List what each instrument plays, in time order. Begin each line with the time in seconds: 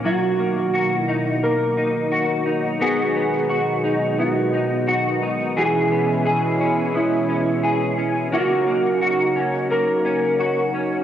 Already playing: clean electric guitar A#3 C#4
0.04 analog synth pad B2 D#3 F#3 A#3 D#4, clean electric guitar F#3 F#4
0.39 clean electric guitar A#3
0.74 clean electric guitar F#4
1.01 clean electric guitar E4
1.08 clean electric guitar D#4
1.43 clean electric guitar A#3 A#4
1.77 clean electric guitar D#4
2.12 clean electric guitar F#4
2.46 clean electric guitar D#4
2.80 analog synth pad B2 G#3, clean electric guitar B3 F#4 G#4
3.15 clean electric guitar B3
3.49 clean electric guitar F#4
3.84 clean electric guitar D#4
4.19 clean electric guitar B3 F#4
4.53 clean electric guitar D#4
4.87 clean electric guitar F#4
5.22 clean electric guitar D#4
5.56 clean electric guitar E3 G#4, analog synth pad E3 G#3 C#4 E4
5.91 clean electric guitar B3
6.26 clean electric guitar G#4
6.60 clean electric guitar C#4
6.94 clean electric guitar B3 E4
7.29 clean electric guitar C#4
7.63 clean electric guitar G#4
7.98 clean electric guitar C#4
8.32 analog synth pad C#3 F#3 D#4 F#4 A#4, clean electric guitar A#3 F#4
8.67 clean electric guitar A#3
9.01 clean electric guitar F#4
9.36 clean electric guitar C#4
9.70 clean electric guitar A#3 A#4
10.05 clean electric guitar C#4
10.39 clean electric guitar F#4
10.74 clean electric guitar C#4